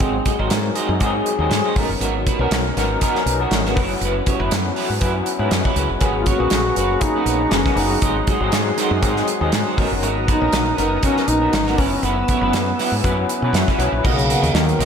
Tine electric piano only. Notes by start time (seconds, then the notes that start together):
0.01 F#3 G#3 C4 D#4 G#4
0.39 F#3 G#3 C4 D#4 A#4
0.75 F#3 G#3 C4 D#4 G#4
1.00 F#3 G#3 C4 D#4 G#4
1.40 F#3 G#3 C4 D#4 G#4
1.76 F#3 B3 C#4 D#4 A4
1.83 A#4
2.40 F#3 B3 C#4 D#4 A#4
2.77 F#3 B3 C#4 D#4 A#4
3.01 F#3 B3 C#4 D#4 A#4
3.39 F#3 B3 C#4 D#4 F#4
3.75 F#3 B3 C#4 E4 B4
4.38 F#3 B3 C#4 E4 B4
4.76 F#3 B3 C#4 E4 B4
5.00 F#3 B3 C#4 E4 B4
5.39 F#3 B3 C#4 E4 B4
5.50 B4 D#5
5.77 G#4 B4
6.00 F#3 A#3 B3 C#4 G#4
6.38 F#3 A#3 B3 C#4 G#4
6.75 F#3 A#3 B3 C#4 B4
7.00 F#3 A#3 B3 C#4 G#4
7.39 F#3 A#3 B3 C#4 G#4
7.76 F#3 A#3 B3 C#4 G#4
8.01 F#3 G#3 C4 D#4 G#4
8.41 F#3 G#3 C4 D#4 G#4
8.77 F#3 G#3 C4 D#4 A#4
9.01 F#3 G#3 C4 D#4 G#4
9.41 F#3 G#3 C4 D#4 G#4
9.76 F#3 B3 C#4 D#4 A#4
10.40 F#3 B3 C#4 D#4 A#4
10.78 F#3 B3 C#4 D#4 A#4
11.03 F#3 B3 C#4 D#4 A#4
11.41 F#3 B3 C#4 D#4 A#4
11.77 F#3 B3 C#4 E4 B4
12.42 F#3 B3 C#4 E4 B4
12.78 F#3 B3 C#4 E4 B4 G#5
13.03 F#3 B3 C#4 E4 B4 F#5
13.43 F#3 B3 C#4 E4 B4
13.55 E5
13.79 F#3 B3 C#4 E4 B4
14.05 F#3 A#3 B3 D#4
14.54 F#3 A#3 B3 D#4 A#4
14.79 F#3 A#3 B3 D#4 A#4